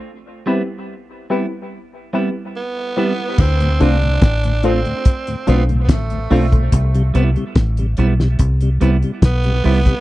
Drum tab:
CC |----------------|x---------------|----------------|
HH |----------------|-xxxxxxxxxxxxxox|xxxxxxx-xxxxxxox|
SD |----------------|----o-------o---|----o--o----o---|
BD |----------------|o---o---o---o--o|o---o---o---o--o|